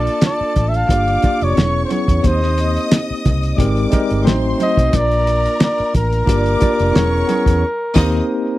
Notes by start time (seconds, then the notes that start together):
Already playing: A#3 D4 F4 A4 D5 A5
0.07 closed hi-hat
0.21 snare, closed hi-hat, high conga
0.26 D5
0.41 muted fingered electric bass stroke
0.56 A1, kick, closed hi-hat
0.69 E5
0.74 F5, closed hi-hat
0.88 G1 A#3 D4 F4 G4 D5 D6, kick, closed hi-hat
1.07 closed hi-hat
1.21 A#3 D4 F4 G4 D5, muted fingered electric bass stroke, kick, closed hi-hat, muted conga
1.41 F1 C#5, closed hi-hat
1.55 E1 B3 C#4 E4 G#4 C#5 C#6, snare, closed hi-hat, high conga
1.85 C5
1.90 B3 C#4 E4 G#4 C#5, closed hi-hat, high conga
2.08 E2, kick, closed hi-hat
2.22 D#2 A#3 C4 D#4 G4 C5 D#5 D#6, kick, closed hi-hat, muted conga
2.26 C5
2.42 snare
2.58 closed hi-hat
2.76 closed hi-hat
2.91 snare, closed hi-hat, high conga
3.11 muted fingered electric bass stroke
3.25 C2, kick, closed hi-hat, low conga
3.43 closed hi-hat
3.57 G#1 G#3 C4 D#4 G4 A#4 D5 D6, kick, closed hi-hat, low conga
3.77 closed hi-hat
3.90 G#3 C4 D#4 G4 A#4, muted fingered electric bass stroke, kick, closed hi-hat, muted conga
4.10 G1, closed hi-hat
4.24 A1 A3 C4 D#4 F#4 C5 C6, snare, closed hi-hat, high conga
4.57 A3 C4 D#4 F#4 C5, closed hi-hat, high conga
4.63 D#5
4.77 B1, kick, closed hi-hat
4.91 A#1 A#3 D4 F4 A#4 C#5 A#5, kick, closed hi-hat, muted conga
4.96 D5
5.01 D5
5.11 closed hi-hat
5.27 closed hi-hat
5.46 closed hi-hat
5.60 D5, snare, closed hi-hat, high conga
5.78 muted fingered electric bass stroke, closed hi-hat
5.94 A1 A#4, kick, closed hi-hat
6.13 closed hi-hat
6.26 G1 A#3 D4 F4 G4 D5 D6, kick, closed hi-hat, muted conga
6.46 closed hi-hat
6.59 A#3 D4 F4 G4 D5, muted fingered electric bass stroke, kick, closed hi-hat, muted conga
6.79 F1, closed hi-hat
6.93 E1 B3 C#4 E4 G#4 C#5 C#6, snare, closed hi-hat, high conga
7.27 B3 C#4 E4 G#4 C#5, closed hi-hat, high conga
7.46 E2, kick, closed hi-hat
7.94 D#2 A#3 C4 D#4 G4 C5 D#5 D#6, kick, snare, crash